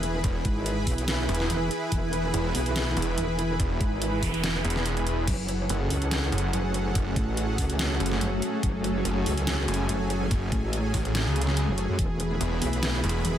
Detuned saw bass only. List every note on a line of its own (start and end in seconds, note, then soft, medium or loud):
0.24 0.43 E1 loud
1.29 1.48 E1 loud
2.34 2.53 E1 loud
2.97 3.16 E1 loud
3.60 3.79 E1 loud
4.65 5.26 E1 loud
5.69 5.89 F#1 loud
6.32 6.52 F#1 loud
6.95 7.15 F#1 loud
8.00 8.20 F#1 loud
9.05 9.25 F#1 loud
9.68 9.87 F#1 loud
10.31 10.50 F#1 loud
10.94 11.24 A1 loud
11.26 11.66 C#2 loud
12.41 12.60 E1 loud
13.04 13.23 E1 loud